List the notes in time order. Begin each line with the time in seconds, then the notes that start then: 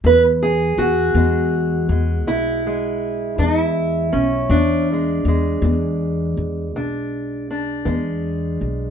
0.04 E2 B4
0.43 G#4
0.78 E2 F#4
1.15 E2 E3 G#3
1.89 E2 G#3
2.26 B1 E2 E4
2.67 G#3
3.38 E2 E3 D#4
3.59 E4
4.13 B1 C#4
4.50 E2 D4
4.54 E2
4.92 G#3
5.25 E2 G#3
5.62 E2 E3
6.37 E2
6.75 B1 E2 D4
7.51 D4
7.85 E2 E3 G#3
8.61 B1